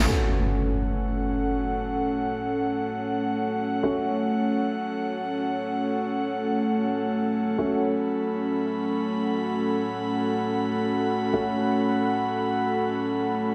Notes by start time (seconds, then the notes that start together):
Already playing: G#5
0.08 A3 C#4 F#4 C#5, impact
0.18 F#5
0.29 A4
3.83 A3 C#4 F#4
7.58 A3 C#4 F#4 F#5
7.68 B5
11.33 A3 C#4 F#4